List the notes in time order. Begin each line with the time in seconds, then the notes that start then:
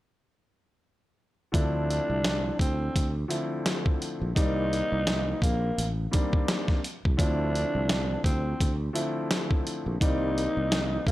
1.52 D2 D3 F3 A3 C4 D4 E4, kick, closed hi-hat
1.91 closed hi-hat
2.10 C2
2.25 snare, closed hi-hat
2.59 D2 C4, kick, closed hi-hat
2.96 D2, kick, closed hi-hat
3.28 D3 F3 A3 C4 E4, closed hi-hat
3.66 snare, closed hi-hat
3.86 kick
4.02 closed hi-hat
4.21 A#1
4.36 C2 D#3 G3 A#3 C4 D#4 D5, kick, closed hi-hat
4.73 closed hi-hat
4.92 C2
5.07 snare, closed hi-hat
5.42 A#1 A#3, kick, closed hi-hat
5.78 A1, closed hi-hat
6.11 D#3 G3 A#3 C4 D4, kick, closed hi-hat
6.33 kick
6.48 snare, closed hi-hat
6.68 kick, snare
6.84 closed hi-hat
7.05 C2, kick
7.17 D2 D3 F3 A3 C4 D4 E4, kick, closed hi-hat
7.55 closed hi-hat
7.75 C2
7.89 snare, closed hi-hat
8.24 D2 C4, kick, closed hi-hat
8.61 D2, kick, closed hi-hat
8.93 D3 F3 A3 C4 E4, closed hi-hat
9.31 snare, closed hi-hat
9.51 kick
9.67 closed hi-hat
9.86 A#1
10.01 C2 D#3 G3 A#3 C4 D#4 D5, kick, closed hi-hat
10.38 closed hi-hat
10.57 C2
10.72 snare, closed hi-hat
11.07 A#1 A#3, kick, closed hi-hat